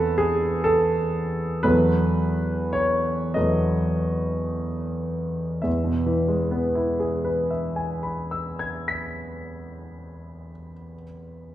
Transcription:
Already playing: E2 E3 A3 C4 A4 B4
0.18 G#4
0.64 A4
1.63 E2 F#3 A3 B3 B4
2.73 C#5
3.34 E2 F#3 A3 B3 D#5
5.62 E2 E5
5.84 B2
6.06 E3
6.28 G#3
6.51 B3
6.75 E4
7.00 G#4
7.25 B4
7.51 E5
7.76 G#5
8.03 B5
8.31 E6
8.59 G#6
8.88 B6

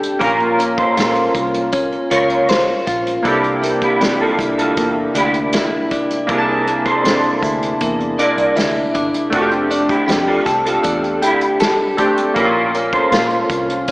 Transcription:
Already playing: C4 D4 G4 A4
0.03 closed hi-hat
0.19 A#1 A#3 C#4 F4 A#4, kick, closed hi-hat
0.24 A#4
0.40 closed hi-hat
0.59 C#4, closed hi-hat
0.78 A4 C5, kick, closed hi-hat
0.97 A#2 F4, snare, closed hi-hat
1.15 closed hi-hat
1.35 C2, kick, closed hi-hat
1.54 closed hi-hat
1.72 C#4, kick, closed hi-hat
1.92 closed hi-hat
2.11 C#2 F4 A#4 C#5, closed hi-hat
2.30 closed hi-hat
2.49 C5, snare, closed hi-hat
2.87 A#1 F4, kick, closed hi-hat
3.07 closed hi-hat
3.23 C2 C3 A#3 D4 E4 A4, kick, closed hi-hat
3.28 G4
3.44 closed hi-hat
3.63 A#3, closed hi-hat
3.82 E4 G4, kick, closed hi-hat
4.01 C3 D4, snare, closed hi-hat
4.21 F4 A4
4.39 C2 E4, kick, closed hi-hat
4.58 F4 A4, closed hi-hat
4.77 E2 A#3, kick, closed hi-hat
5.15 D2 D4 E4 G4, closed hi-hat
5.34 closed hi-hat
5.53 E4, snare, closed hi-hat
5.91 D4, kick, closed hi-hat
6.10 closed hi-hat
6.27 C2 C3 A#3 D4 E4 G4 A#4, kick, closed hi-hat
6.32 G#4
6.38 A5
6.67 A#3, closed hi-hat
6.86 A4 C5, kick, closed hi-hat
7.04 C3 D4, snare, closed hi-hat
7.24 closed hi-hat
7.43 D2 E4, kick, closed hi-hat
7.63 closed hi-hat
7.80 E2 A#3, kick, closed hi-hat
7.99 E2, closed hi-hat
8.19 D4 A#4 D5, closed hi-hat
8.37 C2, closed hi-hat
8.56 D2 E4, snare, closed hi-hat
8.76 closed hi-hat
8.95 G1 D4, kick, closed hi-hat
9.14 closed hi-hat
9.30 F1 A3 C4 D4 F4 A4, kick, closed hi-hat
9.35 F#4
9.42 G4
9.51 closed hi-hat
9.71 D4, closed hi-hat
9.89 E4 G4, kick, closed hi-hat
10.08 F2 G4, snare, closed hi-hat
10.28 F4 A4
10.46 C2 A4, kick, snare, closed hi-hat
10.66 F4 A4, closed hi-hat
10.83 E2 D4, kick, closed hi-hat
11.04 closed hi-hat
11.22 D2 E4 G4, closed hi-hat
11.41 closed hi-hat
11.60 A4, snare, closed hi-hat
11.97 A3 C4 D4 G4, kick, closed hi-hat
12.18 closed hi-hat
12.34 A#1 A#3 C#4 F4 A#4, kick, closed hi-hat
12.39 E4
12.45 F4
12.74 C#4, closed hi-hat
12.93 A4 C5, kick, closed hi-hat
13.12 A#2 F4, snare, closed hi-hat
13.30 closed hi-hat
13.50 C2, kick, closed hi-hat
13.70 closed hi-hat
13.88 closed hi-hat

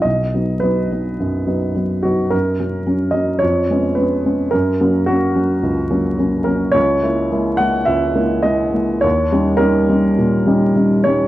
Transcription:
0.02 B1 D#5
0.34 F#3 B3 D#4
0.60 F#3 B3 D#4 B4
0.92 F#3 B3 D#4
1.20 F#2
1.47 F#3 B3 D#4
1.76 F#3 B3 D#4
2.03 F#3 B3 D#4 F#4
2.30 F#2 A#4
2.60 F#3 C#4
2.87 F#3 C#4
3.11 F#3 C#4 D#5
3.39 F2 C#5
3.70 G#3 B3 C#4
3.95 G#3 B3 C#4 B4
4.25 G#3 B3 C#4
4.51 F#2 A#4
4.81 F#3 A#3 C#4
5.06 F#3 A#3 C#4 F#4
5.35 F#3 A#3 C#4
5.63 C#2
5.90 F#3 A#3 C#4
6.19 F#3 A#3 C#4
6.44 F#3 A#3 C#4 A#4
6.72 C#2 C#5
7.03 G#3 A#3 E4
7.32 G#3 A#3 E4
7.57 G#3 A#3 E4 F#5
7.85 C#2 E5
8.15 G#3 A#3 E4
8.43 G#3 A#3 E4 D#5
8.74 G#3 A#3 E4
9.01 D#2 C#5
9.32 G3 C#4 D#4
9.57 G3 C#4 D#4 A#4
9.89 G3 C#4 D#4
10.18 A#2
10.46 G3 C#4 D#4
10.76 G3 C#4 D#4
11.04 G3 C#4 D#4 C#5

